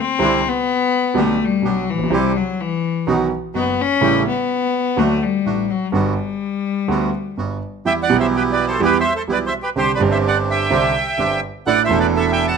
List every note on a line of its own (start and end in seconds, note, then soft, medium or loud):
0.00 0.50 C4 loud
0.19 0.40 C2 medium
0.19 0.40 C3 medium
0.19 0.40 D3 medium
0.19 0.40 G3 medium
0.19 0.40 C4 medium
0.19 0.41 C4 medium
0.19 0.41 D4 medium
0.19 0.41 E4 medium
0.48 1.21 B3 medium
1.14 1.36 B1 medium
1.14 1.36 B2 medium
1.14 1.36 D3 medium
1.14 1.36 G3 medium
1.14 1.36 B3 medium
1.14 1.37 B3 medium
1.14 1.37 D4 medium
1.14 1.36 G4 medium
1.14 1.37 G4 medium
1.20 1.45 A3 medium
1.44 1.68 G3 medium
1.62 1.84 B1 medium
1.62 1.83 B2 soft
1.62 1.85 B3 soft
1.62 1.85 D4 soft
1.62 1.85 G4 soft
1.67 1.91 F#3 medium
1.90 2.00 A1 soft
1.90 2.15 E3 medium
1.98 2.06 A#1 medium
2.03 2.11 B1 medium
2.10 2.31 C2 medium
2.10 2.32 C3 medium
2.10 2.31 E3 medium
2.10 2.31 G3 medium
2.10 2.32 C4 medium
2.10 2.32 E4 medium
2.10 2.32 G4 medium
2.10 2.33 G4 medium
2.14 2.38 G3 medium
2.37 2.62 F#3 medium
2.60 3.08 E3 medium
3.07 3.28 B1 medium
3.07 3.28 B2 medium
3.07 3.28 D#3 medium
3.07 3.27 F#3 medium
3.07 3.27 B3 medium
3.07 3.28 B3 medium
3.07 3.28 D#4 medium
3.07 3.28 F#4 medium
3.54 3.75 F#1 medium
3.54 3.75 F#2 soft
3.54 3.75 B3 soft
3.54 3.83 B3 medium
3.54 3.75 D#4 soft
3.54 3.75 F#4 medium
3.81 4.27 C#4 loud
4.01 4.22 A1 medium
4.01 4.22 A2 medium
4.01 4.22 C#3 medium
4.01 4.22 G3 medium
4.01 4.22 A3 medium
4.01 4.23 A3 medium
4.01 4.23 C#4 medium
4.01 4.22 E4 medium
4.01 4.23 G4 medium
4.27 5.00 B3 medium
4.96 5.18 D2 medium
4.96 5.18 D3 medium
4.96 5.17 F#3 medium
4.96 5.18 A3 medium
4.96 5.24 A3 medium
4.96 5.18 D4 medium
4.96 5.18 F#4 medium
5.22 5.71 G3 medium
5.45 5.66 A1 soft
5.45 5.66 A2 medium
5.45 5.66 A3 soft
5.45 5.66 D4 soft
5.45 5.66 F#4 soft
5.70 5.93 F#3 medium
5.92 6.13 G1 medium
5.92 6.13 G2 medium
5.92 6.13 D3 medium
5.92 6.13 G3 medium
5.92 7.57 G3 medium
5.92 6.13 B3 medium
5.92 6.14 B3 medium
5.92 6.13 F#4 medium
5.92 6.14 F#4 medium
6.88 7.09 D2 medium
6.88 7.09 D3 medium
6.88 7.09 G3 medium
6.88 7.10 G3 medium
6.88 7.09 B3 medium
6.88 7.10 B3 medium
6.88 7.09 F#4 medium
6.88 7.10 F#4 medium
7.37 7.58 G1 medium
7.37 7.57 G2 soft
7.37 7.58 G3 soft
7.37 7.58 B3 soft
7.37 7.58 F#4 soft
7.85 8.06 E2 medium
7.85 8.06 E3 medium
7.85 8.05 G3 soft
7.85 8.05 B3 soft
7.85 8.06 B3 medium
7.85 8.06 E4 medium
7.85 8.05 G4 medium
7.85 8.06 G4 medium
7.85 7.94 E5 medium
7.85 7.93 G5 loud
8.03 8.17 D5 medium
8.03 8.17 F#5 loud
8.07 8.78 B1 loud
8.07 8.77 B2 medium
8.07 8.76 E3 medium
8.07 8.77 G3 medium
8.07 8.77 B3 medium
8.07 8.78 E4 medium
8.07 8.78 G4 medium
8.11 8.78 G4 medium
8.20 8.26 C5 medium
8.20 8.27 E5 medium
8.36 8.43 G4 medium
8.36 8.43 B4 medium
8.52 8.66 B4 medium
8.52 8.66 D5 medium
8.67 8.81 A4 medium
8.67 8.81 C5 medium
8.80 9.01 E2 medium
8.80 9.00 E3 medium
8.80 9.01 G3 medium
8.80 9.01 B3 medium
8.80 9.01 E4 medium
8.80 9.01 G4 medium
8.84 8.98 G4 medium
8.84 8.98 B4 loud
9.00 9.13 C5 medium
9.00 9.13 E5 loud
9.16 9.22 A4 medium
9.16 9.23 C5 medium
9.28 9.48 B1 medium
9.28 9.48 B2 medium
9.28 9.48 E3 soft
9.28 9.48 G3 soft
9.28 9.48 B3 soft
9.28 9.49 E4 soft
9.28 9.48 G4 soft
9.28 9.49 G4 medium
9.32 9.38 B4 medium
9.32 9.39 D5 medium
9.46 9.53 C5 medium
9.46 9.54 E5 medium
9.63 9.69 G4 medium
9.63 9.70 B4 medium
9.76 9.96 C2 medium
9.76 9.96 C3 medium
9.76 9.96 D3 medium
9.76 9.96 G3 soft
9.76 9.96 C4 soft
9.76 9.96 C4 medium
9.76 9.96 D4 medium
9.76 9.96 G4 medium
9.76 9.92 G4 medium
9.76 9.92 C5 loud
9.95 10.67 D3 medium
9.95 10.01 B4 medium
9.95 10.03 D5 medium
10.00 10.68 G1 medium
10.00 10.68 G2 medium
10.00 10.68 G3 medium
10.00 10.68 C4 medium
10.00 10.68 D4 medium
10.00 10.68 G4 medium
10.00 10.69 G4 medium
10.11 10.18 C5 medium
10.11 10.18 E5 medium
10.27 10.37 D5 medium
10.27 10.38 F#5 medium
10.51 11.40 E5 medium
10.51 11.41 G5 medium
10.70 10.91 C2 loud
10.70 10.91 C3 loud
10.70 10.91 D3 medium
10.70 10.91 G3 medium
10.70 10.91 C4 medium
10.70 10.91 D4 medium
10.70 10.91 G4 medium
10.70 10.92 G4 medium
11.18 11.39 G1 medium
11.18 11.39 G2 medium
11.18 11.38 D3 soft
11.18 11.39 G3 soft
11.18 11.39 C4 medium
11.18 11.39 C4 soft
11.18 11.39 D4 soft
11.18 11.39 G4 medium
11.66 11.86 A1 medium
11.66 11.87 A2 medium
11.66 11.86 E3 medium
11.66 11.87 A3 soft
11.66 11.86 D4 medium
11.66 11.87 D4 soft
11.66 11.86 E4 medium
11.66 11.86 A4 medium
11.66 11.87 A4 medium
11.66 11.82 D5 medium
11.66 11.83 F#5 loud
11.84 12.57 E3 medium
11.84 11.99 C5 medium
11.84 11.98 E5 medium
11.89 12.57 E1 loud
11.89 12.57 E2 medium
11.89 12.57 A3 medium
11.89 12.57 D4 medium
11.89 12.57 E4 medium
11.89 12.57 A4 medium
12.00 12.07 B4 medium
12.00 12.07 D5 medium
12.16 12.30 A4 medium
12.16 12.31 E5 loud
12.32 12.46 E5 medium
12.32 12.46 G5 loud
12.47 12.57 F#5 medium
12.47 12.57 A5 medium